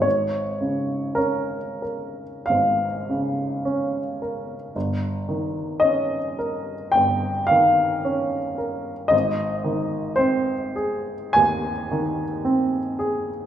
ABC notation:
X:1
M:4/4
L:1/8
Q:1/4=54
K:Ab
V:1 name="Upright piano"
d2 B2 f4 | z2 e2 g f3 | e2 c2 a4 |]
V:2 name="Upright piano" clef=bass
A,,, D, D B A,,, D, D B | G,,, E, D B G,,, E, D B | A,,, E, C A E,, E, C A |]